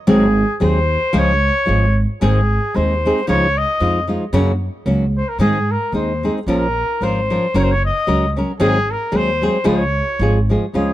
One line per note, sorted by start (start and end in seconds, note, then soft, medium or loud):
0.07 0.42 G#1 loud
0.07 0.25 G#2 medium
0.07 0.25 D#3 medium
0.07 0.25 F#3 medium
0.07 0.25 G#3 medium
0.07 0.25 C4 medium
0.07 0.26 G#4 medium
0.07 0.58 G#4 medium
0.60 0.96 D#2 loud
0.60 0.78 F#3 soft
0.60 0.78 G#3 medium
0.60 0.78 C4 medium
0.60 0.78 G#4 medium
0.65 1.20 C5 medium
1.13 1.49 C#2 medium
1.13 1.31 C#3 medium
1.13 1.31 F3 medium
1.13 1.31 G#3 medium
1.13 1.31 F4 medium
1.13 1.31 G#4 medium
1.18 1.99 C#5 medium
1.66 2.03 G#1 medium
1.66 1.84 F3 soft
1.66 1.84 G#3 soft
1.66 1.85 F4 medium
1.66 1.85 G#4 soft
2.21 2.57 G#1 medium
2.21 2.39 G#2 medium
2.21 2.40 D#3 medium
2.21 2.39 G#3 medium
2.21 2.40 C4 medium
2.21 2.40 D#4 medium
2.21 2.77 G#4 medium
2.21 2.40 G#4 medium
2.74 3.11 D#2 medium
2.74 2.92 G#3 soft
2.74 2.93 C4 soft
2.74 2.93 D#4 soft
2.74 2.94 G#4 soft
2.74 3.29 C5 medium
3.05 3.19 G#3 soft
3.05 3.20 C4 medium
3.05 3.20 D#4 medium
3.05 3.20 G#4 medium
3.27 3.63 C#2 medium
3.27 3.45 C#3 medium
3.27 3.45 F3 medium
3.27 3.46 G#3 medium
3.27 3.46 D#4 medium
3.27 3.46 F4 medium
3.27 3.59 C#5 medium
3.58 4.10 D#5 medium
3.80 4.15 F2 medium
3.80 3.98 F3 soft
3.80 3.98 G#3 medium
3.80 3.99 D#4 soft
3.80 3.99 F4 medium
4.07 4.23 F3 soft
4.07 4.23 G#3 medium
4.07 4.24 D#4 soft
4.07 4.24 F4 medium
4.33 4.67 F#2 medium
4.33 4.51 F#2 medium
4.33 4.51 C#3 medium
4.33 4.51 F#3 medium
4.33 4.51 A#3 medium
4.33 4.51 C#4 medium
4.33 4.51 F#4 medium
4.86 5.20 C#2 medium
4.86 5.04 F#3 medium
4.86 5.04 A#3 medium
4.86 5.04 C#4 medium
4.86 5.05 F#4 medium
5.18 5.30 C5 medium
5.29 5.40 A#4 medium
5.38 5.74 G#2 medium
5.38 5.57 G#2 medium
5.38 5.57 D#3 medium
5.38 5.58 G#3 medium
5.38 5.57 C4 medium
5.38 5.58 D#4 medium
5.38 5.73 G#4 medium
5.38 5.58 G#4 medium
5.72 5.95 A#4 medium
5.92 6.28 D#2 medium
5.92 6.11 G#3 soft
5.92 6.11 C4 soft
5.92 6.12 D#4 soft
5.92 6.12 G#4 soft
5.92 6.34 C5 medium
6.23 6.38 G#3 soft
6.23 6.39 C4 soft
6.23 6.39 D#4 soft
6.23 6.39 G#4 soft
6.46 6.82 A#1 medium
6.46 6.66 A#2 medium
6.46 6.65 F3 medium
6.46 6.66 C#4 medium
6.46 6.66 F4 medium
6.46 6.66 A#4 medium
6.46 7.05 A#4 medium
7.01 7.36 G#1 medium
7.01 7.19 F3 soft
7.01 7.19 C#4 soft
7.01 7.20 F4 soft
7.01 7.20 A#4 medium
7.01 7.60 C5 medium
7.30 7.45 F3 soft
7.30 7.45 C#4 soft
7.30 7.46 F4 medium
7.30 7.46 A#4 medium
7.54 7.89 F#1 loud
7.54 7.72 F#3 medium
7.54 7.73 C#4 medium
7.54 7.73 F#4 medium
7.54 7.73 A#4 medium
7.58 7.65 C#5 medium
7.63 7.73 C5 medium
7.71 7.85 C#5 loud
7.86 8.34 D#5 medium
8.07 8.41 C#2 medium
8.07 8.24 F#3 medium
8.07 8.25 C#4 soft
8.07 8.25 F#4 medium
8.07 8.25 A#4 medium
8.36 8.51 F#3 soft
8.36 8.51 C#4 soft
8.36 8.51 F#4 medium
8.36 8.52 A#4 medium
8.59 8.94 G#1 medium
8.59 8.77 G#2 medium
8.59 8.77 D#3 medium
8.59 8.77 F#3 medium
8.59 8.77 G#3 medium
8.59 8.77 C4 medium
8.59 8.93 G#4 medium
8.59 8.78 G#4 medium
8.91 9.18 A#4 medium
9.12 9.47 D#2 loud
9.12 9.29 F#3 medium
9.12 9.29 G#3 soft
9.12 9.30 C4 soft
9.12 9.30 G#4 medium
9.16 9.43 C5 medium
9.42 9.56 F#3 soft
9.42 9.56 G#3 medium
9.42 9.57 C4 soft
9.42 9.57 G#4 medium
9.46 9.66 C5 medium
9.64 10.00 C#2 medium
9.64 9.82 C#3 medium
9.64 9.82 F3 medium
9.64 9.82 G#3 medium
9.64 9.83 F4 medium
9.64 9.83 G#4 medium
9.64 10.46 C#5 medium
10.19 10.55 G#1 loud
10.19 10.38 F3 soft
10.19 10.38 G#3 soft
10.19 10.38 F4 medium
10.19 10.39 G#4 medium
10.49 10.64 F3 soft
10.49 10.64 G#3 medium
10.49 10.65 F4 medium
10.49 10.65 G#4 medium
10.73 10.93 C#2 medium
10.73 10.92 C#3 soft
10.73 10.92 F3 medium
10.73 10.93 G#3 medium
10.73 10.93 C#4 medium
10.73 10.93 F4 medium
10.73 10.93 G#4 medium